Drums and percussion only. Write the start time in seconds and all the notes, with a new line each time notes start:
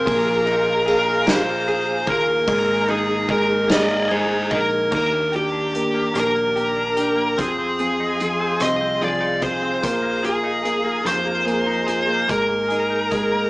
0.07 kick, ride
0.47 ride
0.88 ride
1.27 snare, ride
1.68 ride
2.07 kick, ride
2.48 kick, ride
2.88 ride
3.29 kick, ride
3.69 snare, ride
4.11 ride
4.51 kick, ride
4.92 kick, crash
5.33 closed hi-hat
5.75 closed hi-hat
6.15 cross-stick, closed hi-hat
6.57 closed hi-hat
6.97 closed hi-hat
7.38 kick, closed hi-hat
7.79 closed hi-hat
8.20 closed hi-hat
8.60 cross-stick, closed hi-hat
9.02 closed hi-hat
9.42 kick, closed hi-hat
9.83 kick, closed hi-hat
10.24 closed hi-hat
10.65 closed hi-hat
11.06 cross-stick, closed hi-hat
11.48 closed hi-hat
11.88 closed hi-hat
12.29 kick, closed hi-hat
12.70 closed hi-hat
13.11 kick, closed hi-hat